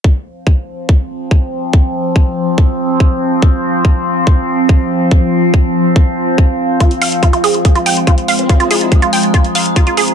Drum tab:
HH |----------------|----------------|----------------|----------------|
BD |o---o---o---o---|o---o---o---o---|o---o---o---o---|o---o---o---o---|

HH |xxoxxxoxxxoxxxox|xxoxxxoxxxoxxxox|
BD |o---o---o---o---|o---o---o---o---|